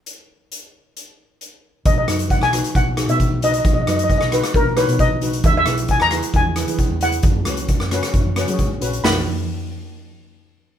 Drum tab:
HH |x---x---x---x---|x-xxx-xxx-xxx-xx|x-xxx-xxx-xxx-xx|x-xxx-xxx-xxx-xx|
SD |----------------|--r--rr---r-----|--r--rrr--r-----|--r--rr---r-----|
FT |----------------|----------------|----------------|----------------|
BD |----------------|o---o---o---o---|o---o---o---o---|o---o---o---o---|

HH |x-xxx-xxx-xxx-xx|o---------------|
SD |--r--rrr--r-----|o---------------|
FT |----------------|o---------------|
BD |o---o---o---o---|----------------|